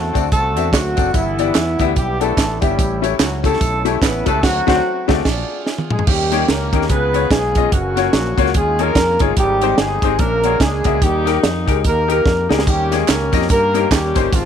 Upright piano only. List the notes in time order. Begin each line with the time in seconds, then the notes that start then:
Already playing: D3
0.13 C4 D4 F#4 A4 D5
0.56 C4 D4 F#4 A4 E5
0.96 C4 D4 F#4 A4 D5
1.14 G2
1.38 B3 D4 E4 G4 D5
1.79 B3 D4 E4 G4 E5
2.20 B3 D4 E4 G4 A4
2.61 B3 D4 E4 G4 E5
2.78 A2
3.02 A3 C#4 E4 G4 C#5
3.44 A3 C#4 E4 G4 A4
3.85 A3 C#4 E4 G4 C#5
4.26 A3 C#4 E4 G4 B4
4.67 A3 C4 D4 F#4 C5
5.08 A3 C4 D4 F#4 D5
6.07 D#3
6.31 A#3 C#4 D#4 G4 C#5
6.72 A#3 C#4 D#4 G4 A#4
6.90 C#3
7.13 B3 C#4 F4 G#4 C#5
7.56 B3 C#4 F4 G#4 D#5
7.96 A#3 C#4 F4 F#4 C#5
8.37 A#3 C#4 F4 F#4 C#5
8.55 D#3
8.79 A#3 D#4 F4 G#4 C#5
9.20 A#3 D#4 F4 G#4 C#5
9.38 G#2
9.62 G#3 C4 D#4 G4 C5
10.03 G#3 C4 D#4 G4 C5
10.20 A#2
10.44 A#3 D4 F#4 G#4 C#5
10.85 A#3 D4 F#4 G#4 E5
11.02 D#3
11.25 D#4 G4 A#4
11.66 D#4 G4 A#4
12.08 D#4 G4 A#4
12.49 D#4 G4 A#4
12.67 D#3
12.91 A#3 C#4 D#4 G4 C#5
13.32 A#3 C#4 D#4 G4 D#5
13.73 A#3 C#4 D#4 G4 A#4
14.15 A#3 C#4 D#4 G4 C5
14.31 G#2